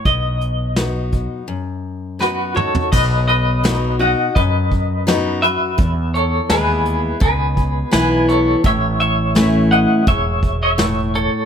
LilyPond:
<<
  \new Staff \with { instrumentName = "Clean electric guitar" } { \time 4/4 \key b \mixolydian \tempo 4 = 84 dis''2. <fis' b'>8 <a' cis''>8 | <b' dis''>8 <b' dis''>4 <dis'' fis''>8 <b' dis''>4. <b' e''>8~ | <b' e''>8 <a' cis''>8 <gis' b'>4 <gis' b'>4 <gis' b'>8 <a' cis''>8 | <cis'' e''>8 <cis'' e''>4 <dis'' fis''>8 <cis'' e''>8. <cis'' e''>8. <a' cis''>8 | }
  \new Staff \with { instrumentName = "Steel-string acoustic guitar" } { \time 4/4 \key b \mixolydian << { r4 <fis b dis' fis'>4 r4 <fis b dis' fis'>8 <dis' fis'>8 | r4 <fis b dis' fis'>8 <dis' fis'>8 r4 <fis b dis' fis'>8 fis'8 | r4 <gis b e'>4 r4 <e b e'>4 | r4 <e a cis' e'>4 r2 | } \\ { b,2 fis,2 | b,2 fis,2 | e,2 b,2 | a,2 gis,4 a,4 | } >> }
  \new Staff \with { instrumentName = "Fretless electric bass" } { \clef bass \time 4/4 \key b \mixolydian b,,2 r2 | b,,2 fis,2 | e,4 dis,4 cis,4 b,,4 | a,,2 e,,2 | }
  \new DrumStaff \with { instrumentName = "Drums" } \drummode { \time 4/4 <hh bd>8 hh8 <hh sn>8 <hh bd>8 r4 sn8 toml16 tomfh16 | <cymc bd>8 hh8 <hh sn>8 hh8 <hh bd>8 <hh bd>8 <hh sn>8 hh8 | <hh bd>8 hh8 <hh sn>8 hh8 <hh bd>8 <hh bd>8 <hh sn>8 hh8 | <hh bd>8 hh8 <hh sn>8 hh8 <hh bd>8 <hh bd>8 <hh sn>8 hh8 | }
>>